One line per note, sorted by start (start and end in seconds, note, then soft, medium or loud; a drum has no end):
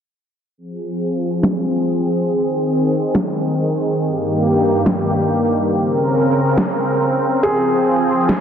0.57 2.27 F3 medium
0.57 3.97 C4 medium
0.57 3.97 G#4 medium
1.43 snare loud
2.29 5.68 D#3 medium
3.15 snare loud
4.00 5.70 G2 medium
4.00 5.70 A#3 medium
4.00 5.70 G4 medium
4.86 snare loud
5.72 7.41 C#3 medium
5.72 8.41 C4 medium
5.72 7.41 A#4 medium
6.57 snare loud
7.43 8.41 F3 medium
7.43 8.21 G#4 medium
7.43 8.41 G#4 medium
8.29 8.41 G#4 medium
8.29 snare loud